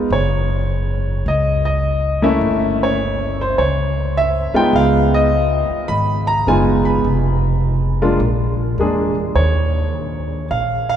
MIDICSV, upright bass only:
0, 0, Header, 1, 3, 480
1, 0, Start_track
1, 0, Tempo, 578592
1, 92, Time_signature, 4, 2, 24, 8
1, 9097, End_track
2, 0, Start_track
2, 0, Title_t, "Upright bass"
2, 0, Program_c, 0, 32
2, 86, Note_on_c, 0, 30, 77
2, 1015, Note_off_c, 0, 30, 0
2, 1044, Note_on_c, 0, 37, 74
2, 1973, Note_off_c, 0, 37, 0
2, 2001, Note_on_c, 0, 31, 74
2, 2932, Note_off_c, 0, 31, 0
2, 2974, Note_on_c, 0, 37, 74
2, 3738, Note_off_c, 0, 37, 0
2, 3925, Note_on_c, 0, 37, 78
2, 4693, Note_off_c, 0, 37, 0
2, 4888, Note_on_c, 0, 32, 78
2, 5335, Note_off_c, 0, 32, 0
2, 5368, Note_on_c, 0, 30, 67
2, 5815, Note_off_c, 0, 30, 0
2, 5844, Note_on_c, 0, 29, 77
2, 6773, Note_off_c, 0, 29, 0
2, 6801, Note_on_c, 0, 34, 76
2, 7252, Note_off_c, 0, 34, 0
2, 7284, Note_on_c, 0, 40, 71
2, 7733, Note_off_c, 0, 40, 0
2, 7761, Note_on_c, 0, 39, 81
2, 8691, Note_off_c, 0, 39, 0
2, 8717, Note_on_c, 0, 34, 72
2, 9097, Note_off_c, 0, 34, 0
2, 9097, End_track
3, 0, Start_track
3, 0, Title_t, "Muted upright bass strokes"
3, 3762, Note_on_c, 9, 29, 36
3, 3845, Note_off_c, 9, 29, 0
3, 4727, Note_on_c, 9, 29, 37
3, 4810, Note_off_c, 9, 29, 0
3, 9097, End_track
0, 0, End_of_file